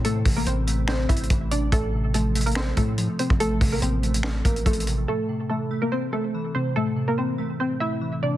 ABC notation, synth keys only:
X:1
M:4/4
L:1/8
Q:1/4=143
K:Aphr
V:1 name="Synth keys" clef=bass
[A,,C,E,A,C] C, E, A, C A, E, C, | A,, C, F, A, C A, F, C, | A,, C, F, A, C A, F, C, | A,, C, E, A, C A, E, C, |
A,, C, E, A, C A, E, C, |]